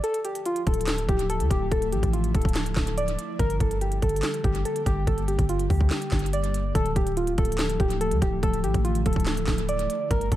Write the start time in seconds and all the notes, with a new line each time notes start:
0.04 D3 F3 A3 E4 A4, closed hi-hat
0.14 closed hi-hat
0.25 G4, closed hi-hat
0.35 closed hi-hat
0.46 F4, closed hi-hat
0.56 closed hi-hat
0.67 D1 A4, kick, closed hi-hat
0.74 closed hi-hat
0.81 closed hi-hat
0.87 snare, clap, closed hi-hat
0.98 closed hi-hat
1.09 D1 G4, kick, closed hi-hat
1.19 closed hi-hat
1.30 A4, closed hi-hat
1.40 D2, closed hi-hat
1.50 D1 G4, kick, closed hi-hat
1.72 D1 A4, kick, closed hi-hat
1.82 closed hi-hat
1.92 A1 G4, closed hi-hat
2.03 A1, kick, closed hi-hat
2.13 F4, closed hi-hat
2.24 closed hi-hat
2.35 D1 A4, kick, closed hi-hat, open hi-hat
2.42 D1, kick, closed hi-hat
2.49 closed hi-hat
2.55 snare, clap, closed hi-hat
2.66 closed hi-hat
2.76 D1, kick, snare, clap, closed hi-hat
2.87 closed hi-hat
2.97 D5, closed hi-hat
3.08 closed hi-hat
3.19 closed hi-hat
3.39 G1 G3 A#3 G4 A#4, kick, closed hi-hat
3.50 closed hi-hat
3.60 G1 A4, kick, closed hi-hat
3.71 closed hi-hat
3.81 G4, closed hi-hat
3.92 closed hi-hat
4.02 G1 A4, kick, closed hi-hat
4.09 closed hi-hat
4.16 closed hi-hat
4.23 snare, clap, closed hi-hat
4.34 closed hi-hat
4.44 G1 G4, kick, closed hi-hat
4.55 closed hi-hat
4.65 A4, closed hi-hat
4.76 closed hi-hat
4.86 G1 G4, kick, closed hi-hat
5.07 G1 A4, kick, closed hi-hat
5.18 closed hi-hat
5.28 G4, closed hi-hat
5.39 G1, kick, closed hi-hat
5.49 F4, closed hi-hat
5.59 closed hi-hat
5.70 D2 G4, kick, open hi-hat
5.81 kick
5.90 snare, clap, closed hi-hat
6.02 closed hi-hat
6.12 G1, kick, snare, clap, closed hi-hat
6.19 closed hi-hat
6.26 closed hi-hat
6.33 D5, closed hi-hat
6.44 closed hi-hat
6.54 closed hi-hat
6.75 D1 F3 A3 E4 A4, kick, closed hi-hat
6.86 closed hi-hat
6.96 D1 G4, kick, closed hi-hat
7.07 closed hi-hat
7.17 F4, closed hi-hat
7.27 closed hi-hat
7.38 D1 A4, kick, closed hi-hat
7.45 closed hi-hat
7.52 closed hi-hat
7.58 snare, clap, closed hi-hat
7.70 closed hi-hat
7.80 D1 G4, kick, closed hi-hat
7.90 closed hi-hat
8.01 A4, closed hi-hat
8.11 D2, closed hi-hat
8.22 D1 G4, kick, closed hi-hat
8.43 D1 A4, kick, closed hi-hat
8.53 closed hi-hat
8.64 A1 G4, closed hi-hat
8.74 A1, kick, closed hi-hat
8.85 F4, closed hi-hat
8.95 closed hi-hat
9.06 D1 A4, kick, closed hi-hat, open hi-hat
9.13 kick, closed hi-hat
9.20 closed hi-hat
9.26 snare, clap, closed hi-hat
9.37 closed hi-hat
9.47 D1, kick, snare, clap, closed hi-hat
9.58 closed hi-hat
9.69 D5, closed hi-hat
9.79 closed hi-hat
9.90 closed hi-hat
10.11 G1 D3 G3 A#3 G4 A#4, kick, closed hi-hat
10.21 closed hi-hat
10.32 G1 A4, kick, closed hi-hat